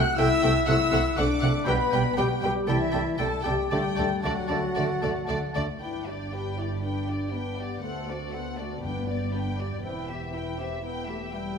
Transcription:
Already playing: french horn section F#4, clarinet F#5, flute section F#6, violin section F#6
0.16 double bass section C2, cello section C3, bassoon A3, viola section A3 A4, french horn section E4, clarinet E5, oboe G5, violin section G5 E6, flute section E6
0.41 double bass section C2, cello section C3, bassoon A3, viola section A3 A4, oboe G5, violin section G5
0.66 double bass section C2, cello section C3, bassoon A3, viola section A3 A4, french horn section E4, clarinet E5, violin section F#5 E6, oboe F#5, flute section E6
0.91 double bass section C2, cello section C3, bassoon A3, viola section A3 A4, oboe F#5, violin section F#5
1.16 double bass section C2, cello section C3, bassoon A3, viola section A3 A4, french horn section D4, clarinet D5, oboe F#5, violin section F#5 D6, flute section D6
1.41 double bass section C2, cello section C3, bassoon A3, viola section A3 A4, oboe F#5, violin section F#5
1.64 double bass section B1, cello section B2, bassoon G3, viola section G3, french horn section B3, clarinet B4, oboe G5, violin section G5 B5, flute section B5
1.68 viola section B4
1.90 double bass section B1, cello section B2, bassoon G3, viola section G3 B4, oboe G5, violin section G5
2.17 double bass section B1, cello section B2, bassoon G3, french horn section G3, viola section G3 B4, clarinet G4, flute section G5, violin section G5, oboe G5
2.41 double bass section B1, cello section B2, french horn section G3, bassoon G3, viola section G3 B4, clarinet G4, oboe G5, flute section G5, violin section G5
2.67 double bass section C2, cello section C3, french horn section E3, bassoon G3, viola section A3 A4, clarinet E4, violin section E5 G5, flute section E5, oboe A5
2.92 double bass section C2, cello section C3, bassoon G3, viola section A3 A4, violin section G5, oboe A5
3.18 double bass section C2, cello section C3, bassoon G3, viola section A3 A4, french horn section A3, clarinet A4, violin section G5 A5, oboe A5, flute section A5
3.43 double bass section C2, cello section C3, french horn section G3, bassoon G3, viola section A3 A4, clarinet G4, violin section G5, flute section G5, oboe A5
3.70 double bass section D2, cello section D3, french horn section G3, viola section A3 A4, bassoon A3, clarinet G4, violin section D5 G5, flute section G5, oboe A5
3.96 double bass section D2, cello section D3, viola section A3 A4, bassoon A3, violin section D5, oboe A5
4.22 double bass section D2, cello section D3, french horn section F#3, viola section A3 A4, bassoon A3, clarinet F#4, violin section D5 F#5, flute section F#5, oboe A5
4.48 double bass section D2, cello section D3, viola section A3 A4, violin section D5, oboe A5
4.52 bassoon A3
4.73 double bass section D2, cello section D3, viola section A3 A4, violin section D5, oboe A5
4.78 bassoon A3
5.01 double bass section D2, cello section D3, viola section A3 A4, bassoon A3, violin section D5, oboe A5
5.25 viola section A3 A4, violin section D5, oboe A5
5.30 double bass section D2, cello section D3, bassoon A3
5.53 double bass section D2, cello section D3, viola section A3 A4, bassoon A3, violin section D5, oboe A5
5.81 double bass section G1, cello section G2, viola section D4, french horn section E4, violin section B4 G5
6.06 french horn section D4, viola section G4, violin section D5
6.32 viola section D4, french horn section G4, violin section B4 G5
6.57 french horn section E4, viola section G4, violin section D5
6.81 french horn section D4, viola section D4, violin section B4 G5
7.06 viola section G4, violin section D5
7.31 french horn section B3, viola section D4, violin section B4 G5
7.57 viola section G4, violin section D5
7.82 cello section D2, double bass section D2, french horn section A3, viola section A4, violin section C5 F#5
8.08 french horn section C4, viola section F#4, violin section A4 D5
8.33 french horn section B3, viola section A4, violin section C5 F#5
8.58 french horn section A3, viola section F#4, violin section A4 D5
8.82 double bass section G1, cello section G2, timpani G2, french horn section B3, viola section D4, violin section B4 G5
9.07 viola section G4, violin section D5
9.33 viola section D4, violin section B4 G5
9.58 viola section G4, violin section D5
9.82 double bass section E1, cello section E2, french horn section C4, viola section E4, violin section B4 G5
10.08 french horn section B3, violin section G4 E5, viola section G4
10.32 french horn section E4, viola section E4, violin section B4 G5
10.57 french horn section C4, viola section G4, violin section G4 E5
10.81 french horn section B3, viola section E4, violin section B4 G5
11.08 french horn section A3, violin section G4 E5, viola section G4
11.32 french horn section G3, viola section E4, violin section B4 G5

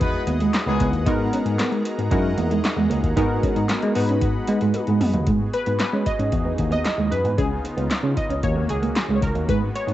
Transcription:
Already playing: tine electric piano E2, analog polysynth G#3 D#4 E4 F#4 B4, analog synth pad G#4 D#5 F#5 D#6
0.00 horn section G#3 B3 F#4 B4, muted clean electric guitar stroke, kick, closed hi-hat
0.27 tine electric piano D#2, clean electric guitar B3, closed hi-hat
0.40 clean electric guitar G#3, closed hi-hat
0.53 snare, clap, closed hi-hat
0.67 tine electric piano C#2, horn section D#3 G#3 B3 G#4, clean electric guitar G#3
0.80 tine electric piano C#2, clean electric guitar B3, kick, closed hi-hat
0.93 tine electric piano D#2, closed hi-hat
1.06 tine electric piano G#2, analog polysynth G#3 B3 D#4 F#4 A#4, analog synth pad B3 G#4 A#5, clean electric guitar D#4, kick, closed hi-hat
1.33 clean electric guitar C#4, closed hi-hat
1.45 tine electric piano G#2, muted clean electric guitar stroke, closed hi-hat
1.59 tine electric piano G#3, clean electric guitar B3, snare, clap, closed hi-hat
1.72 tine electric piano G#3, muted clean electric guitar stroke, closed hi-hat
1.85 closed hi-hat
1.98 tine electric piano G#2, clean electric guitar B3, closed hi-hat
2.11 tine electric piano F#2, analog polysynth G#3 D#4 E4 F#4 A#4, analog synth pad D#5 F#5, muted clean electric guitar stroke, kick, closed hi-hat
2.37 tine electric piano E2, clean electric guitar A#3, closed hi-hat
2.51 clean electric guitar G#3, closed hi-hat
2.64 muted clean electric guitar stroke, snare, clap, closed hi-hat
2.77 tine electric piano E2, clean electric guitar G#3
2.90 tine electric piano C#2, clean electric guitar A#3, closed hi-hat
3.04 tine electric piano D#2, kick, closed hi-hat
3.16 tine electric piano G#2, analog polysynth G#3 B3 D#4 F#4 A#4, analog synth pad B3 F#5, clean electric guitar D#4, kick, closed hi-hat
3.43 clean electric guitar C#4, kick, closed hi-hat
3.56 tine electric piano G#2, muted clean electric guitar stroke, closed hi-hat
3.69 tine electric piano G#3, clean electric guitar B3, snare, clap, closed hi-hat
3.82 tine electric piano G#3, muted clean electric guitar stroke, closed hi-hat
3.95 tine electric piano G#2, analog polysynth G#3 B3 D#4 F#4 B4, analog synth pad D#5 F#5 B5, open hi-hat
4.09 clean electric guitar C#4, closed hi-hat
4.22 muted clean electric guitar stroke, kick, closed hi-hat
4.48 tine electric piano G#3, clean electric guitar B3, closed hi-hat
4.61 tine electric piano G#2, clean electric guitar G#3, closed hi-hat
4.74 muted clean electric guitar stroke, closed hi-hat, high tom
4.87 tine electric piano G#2, clean electric guitar G#3, closed hi-hat
5.01 tine electric piano F#2, clean electric guitar B3, mid tom, open hi-hat
5.14 tine electric piano D#2, closed hi-hat, floor tom
5.27 tine electric piano G#2, clean electric guitar G#3, analog synth pad B3 F#4 G#4, kick, closed hi-hat
5.54 analog polysynth B4, muted clean electric guitar stroke, closed hi-hat
5.66 tine electric piano G#2, clean electric guitar B3, closed hi-hat
5.80 tine electric piano G#3, analog polysynth B4, snare, clap, closed hi-hat
5.93 tine electric piano G#3, clean electric guitar C#4
6.06 analog polysynth D#5, kick, closed hi-hat
6.19 tine electric piano G#2, clean electric guitar C#4, closed hi-hat
6.32 tine electric piano E2, analog synth pad E3 D#4, kick, closed hi-hat
6.45 clean electric guitar B3
6.58 tine electric piano D#2, muted clean electric guitar stroke, kick, closed hi-hat
6.71 clean electric guitar B3, analog polysynth D#5, closed hi-hat
6.85 snare, clap, closed hi-hat
6.98 tine electric piano D#2, clean electric guitar G#3
7.11 tine electric piano F#2, analog polysynth B4, muted clean electric guitar stroke, closed hi-hat
7.24 tine electric piano G#2, clean electric guitar B3, closed hi-hat
7.38 tine electric piano C#2, analog synth pad C#3 B3 D#4 F4, clean electric guitar C#4, analog polysynth G#4, kick, closed hi-hat
7.64 muted clean electric guitar stroke, closed hi-hat
7.77 tine electric piano C#2, clean electric guitar B3, closed hi-hat
7.90 tine electric piano C#3, snare, clap, closed hi-hat
8.03 tine electric piano C#3, clean electric guitar C#4
8.17 analog polysynth D#5, muted clean electric guitar stroke, kick, closed hi-hat
8.30 tine electric piano C#2, clean electric guitar C#4, closed hi-hat
8.43 tine electric piano D#2, analog synth pad D#3 A#3 C#4 F#4, analog polysynth C#5, kick, closed hi-hat
8.56 clean electric guitar A#3
8.69 tine electric piano C#2, analog polysynth G#4, muted clean electric guitar stroke, closed hi-hat
8.82 clean electric guitar A#3, closed hi-hat
8.95 snare, clap, closed hi-hat
9.09 tine electric piano C#2, clean electric guitar G#3
9.16 analog polysynth C#5
9.22 tine electric piano C#2, analog polysynth A#4, muted clean electric guitar stroke, kick, closed hi-hat
9.35 tine electric piano D#2, clean electric guitar A#3, closed hi-hat
9.48 tine electric piano G#2, analog synth pad G#3 B3, clean electric guitar G#3, analog polysynth B4, kick, closed hi-hat
9.74 analog polysynth C#5, muted clean electric guitar stroke, closed hi-hat
9.87 tine electric piano G#2, clean electric guitar B3, closed hi-hat

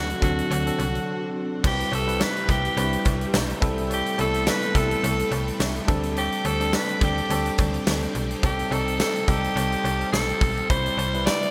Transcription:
Already playing: fm bass D2, string machine D3 C4 F#4, tine electric piano F#3 C4 D4 A4, alto saxophone F#4
0.10 closed hi-hat
0.21 fm bass D2, tine electric piano F#3 C4 D4 A4, alto saxophone F#4, kick, closed hi-hat
0.39 closed hi-hat
0.51 fm bass D2, closed hi-hat, cowbell
0.66 tine electric piano F#3 C4 D4 A4, closed hi-hat
0.79 fm bass C2, closed hi-hat, cowbell
0.95 closed hi-hat
1.63 fm bass C2, overdriven electric guitar C3 G3 C4, tine electric piano G3 C4 E4 B4, string machine G4 E5 G5, alto saxophone G4, kick, crash, cowbell
1.80 closed hi-hat
1.92 fm bass C2, alto saxophone A4, closed hi-hat, cowbell
2.06 tine electric piano G3 C4 E4 B4, closed hi-hat
2.20 alto saxophone B4, snare, tambourine, cowbell
2.36 closed hi-hat
2.48 fm bass C2, overdriven electric guitar G3 C4, alto saxophone G4, kick, closed hi-hat
2.65 closed hi-hat
2.77 fm bass C2, overdriven electric guitar C3 G3 C4, tine electric piano G3 C4 D4 B4, closed hi-hat, cowbell
2.84 tine electric piano E4
2.93 closed hi-hat
3.05 fm bass C2, kick, closed hi-hat, cowbell
3.21 closed hi-hat
3.33 fm bass B1, overdriven electric guitar C3 G3 C4, snare, tambourine, cowbell
3.49 closed hi-hat
3.60 fm bass C2, overdriven electric guitar E3 A3, tine electric piano G3 C4 E4 A4, string machine A4 G5 C6, kick, closed hi-hat
3.65 overdriven electric guitar A2
3.78 closed hi-hat
3.90 alto saxophone G4, closed hi-hat, cowbell
4.06 closed hi-hat
4.18 fm bass C2, tine electric piano G3 B3 E4 A4, alto saxophone A4, closed hi-hat, cowbell
4.25 tine electric piano C4
4.34 closed hi-hat
4.47 alto saxophone B4, snare, tambourine, cowbell
4.62 closed hi-hat
4.75 fm bass C2, overdriven electric guitar E3 A3, tine electric piano G3 C4 E4 A4, alto saxophone A4, kick, closed hi-hat
4.91 closed hi-hat
5.03 fm bass C2, overdriven electric guitar A2 E3 A3, closed hi-hat, cowbell
5.19 closed hi-hat
5.31 fm bass C2, closed hi-hat, cowbell
5.48 closed hi-hat
5.60 fm bass C2, overdriven electric guitar A2 E3 A3, tine electric piano E5, snare, tambourine, cowbell
5.76 closed hi-hat
5.87 fm bass D2, tine electric piano G3 C4 D4 A4 A5, overdriven electric guitar A3 D4, string machine C5 D6, kick, closed hi-hat
5.92 overdriven electric guitar D3
6.03 closed hi-hat
6.17 alto saxophone G4, closed hi-hat, cowbell
6.32 closed hi-hat
6.45 fm bass D2, alto saxophone A4, closed hi-hat, cowbell
6.60 tine electric piano G3 C4 D4 A4, closed hi-hat
6.73 alto saxophone B4, snare, tambourine, cowbell
6.89 closed hi-hat
7.01 fm bass D2, overdriven electric guitar A3 D4, alto saxophone G4, kick, closed hi-hat
7.18 closed hi-hat
7.30 fm bass D2, overdriven electric guitar D3 A3 D4, tine electric piano G3 C4 D4 A4, closed hi-hat, cowbell
7.46 closed hi-hat
7.58 fm bass D2, kick, closed hi-hat, cowbell
7.74 closed hi-hat
7.86 fm bass D2, overdriven electric guitar D3 A3 D4, snare, tambourine, cowbell
8.02 closed hi-hat
8.15 fm bass B1, closed hi-hat
8.30 closed hi-hat
8.42 fm bass C2, overdriven electric guitar C3 G3 C4, tine electric piano G3 C4 D#4 A4, alto saxophone G4, string machine A5 D#6, kick, closed hi-hat, cowbell
8.59 closed hi-hat
8.71 fm bass C2, tine electric piano G3 C4 D#4 A4, alto saxophone A4, closed hi-hat, cowbell
8.88 closed hi-hat
9.00 alto saxophone A4, snare, tambourine, cowbell
9.16 closed hi-hat
9.28 fm bass C2, tine electric piano G3 C4 D#4 A4, overdriven electric guitar G3 C4, alto saxophone G4, kick, closed hi-hat
9.44 closed hi-hat
9.56 fm bass C2, overdriven electric guitar C3 G3 C4, closed hi-hat, cowbell
9.72 closed hi-hat
9.84 fm bass C2, closed hi-hat, cowbell
10.01 closed hi-hat
10.12 fm bass B1, overdriven electric guitar C3 G3 C4, alto saxophone A4, snare, tambourine, cowbell
10.29 closed hi-hat
10.41 fm bass B1, kick, open hi-hat
10.57 closed hi-hat
10.69 fm bass C2, overdriven electric guitar C3 G3 C4, tine electric piano G3 C4 E4 B5, string machine C4 B5 E6, alto saxophone C5, kick, closed hi-hat, cowbell
10.86 closed hi-hat
10.97 fm bass C2, closed hi-hat, cowbell
11.14 tine electric piano G3 C4 E4 B4, closed hi-hat
11.26 alto saxophone D5, snare, tambourine, cowbell
11.43 closed hi-hat

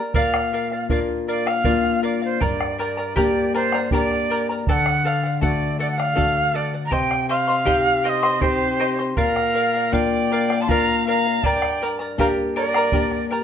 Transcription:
Already playing: charango A#4 D5 A#5
0.14 nylon-string guitar A#2, charango A#4 D5 F5, quena F5, bombo low
0.34 bombo rim
0.53 charango A#4 D5 F5
0.72 charango D5 F5, bombo rim
0.89 nylon-string guitar A#3 D4 F4, charango A#4 D5 F5, quena D5, bombo low
1.28 charango A#4 D5 F5, quena D5
1.46 charango D5 F5, quena F5, bombo rim
1.64 nylon-string guitar A#3 D4 F4, charango A#4 D5 F5, bombo low
1.84 bombo rim
2.03 charango A#4 D5 F5, quena D5
2.22 quena C5, charango D5 F5
2.40 nylon-string guitar G2, charango A#4 D5 G5 A#5, quena D5, bombo low
2.61 bombo rim
2.78 charango A#4 D5 G5 A#5, quena D5
2.97 charango A#4 D5 A#5, bombo rim
3.16 nylon-string guitar A#3 D4 G4, charango G4 A#4 D5 G5 A#5, bombo low
3.20 quena D5
3.54 charango A#4 D5 G5 A#5, quena C5
3.72 charango A#4 D5 A#5, bombo rim
3.91 nylon-string guitar A#3 D4 G4, charango A#4 D5 G5 A#5, bombo low
3.95 quena D5
4.11 bombo rim
4.30 charango A#4 D5 G5 A#5
4.49 charango A#4 D5 A#5
4.67 nylon-string guitar D3, charango A4 D5 F#5, quena G5, bombo low
4.73 quena F#5
4.86 bombo rim
5.05 charango A4 D5 F#5, quena F5
5.24 charango D5 F#5, bombo rim
5.41 nylon-string guitar A3 D4 F#4, charango A4 D5 F#5, quena D5, bombo low
5.79 charango A4 D5 F#5, quena D5
5.91 quena F#5
5.98 charango D5 F#5, quena F5, bombo rim
6.15 nylon-string guitar A3 D4 F#4, charango A4 D5, bombo low
6.37 bombo rim
6.54 charango A4 D5 F#5, quena D5
6.74 charango D5 F#5
6.86 quena A#5
6.91 nylon-string guitar C3, charango C5 D#5 G5 C6, quena G5, bombo rim, bombo low
7.11 bombo rim
7.29 charango C5 D#5 G5 C6, quena F5
7.48 charango C5 D#5 C6
7.65 nylon-string guitar C4 D#4 G4, charango G4 C5 D#5 G5 C6, bombo low
8.04 charango C5 D#5 G5 C6, violin C5, quena F5
8.09 quena D#5
8.23 charango C5 D#5 C6, bombo rim
8.41 nylon-string guitar C4 D#4 G4, violin G4, quena C5, charango C5 D#5 G5 C6, bombo low
8.80 charango C5 D#5 G5 C6
8.99 charango C5 D#5 C6
9.17 nylon-string guitar A#2, charango A#4 D5 F5, violin A#4, quena F5, bombo low
9.36 bombo rim
9.54 charango A#4 D5 F5
9.74 charango D5 F5, bombo rim
9.92 nylon-string guitar A#3 D4 F4, charango A#4 D5 F5, violin D5, quena G5, bombo low
10.32 charango A#4 D5 F5
10.50 charango D5 F5, bombo rim
10.62 violin A5, quena C6
10.67 nylon-string guitar A#3 D4 F4, charango A#4 D5 F5, violin F5, quena A#5, bombo low
10.88 bombo rim
11.05 charango A#4 D5 F5, violin F5, quena A#5
11.26 charango D5 F5
11.42 nylon-string guitar G2, violin D5, charango G5, quena A5, bombo low
11.46 charango A#4 D5 A#5, quena G5
11.62 bombo rim
11.82 charango A#4 D5 G5 A#5
11.99 charango A#4 D5 A#5, bombo rim
12.18 nylon-string guitar A#3 D4 G4, charango G4 A#4 D5 G5 A#5, violin A#4, quena F5, bombo low
12.56 violin A#4, charango A#4 D5 G5 A#5, quena D5
12.74 charango A#4 D5 A#5, bombo rim
12.92 nylon-string guitar A#3 D4 G4, charango A#4 D5 G5 A#5, bombo low
13.11 bombo rim
13.31 charango A#4 D5 G5 A#5

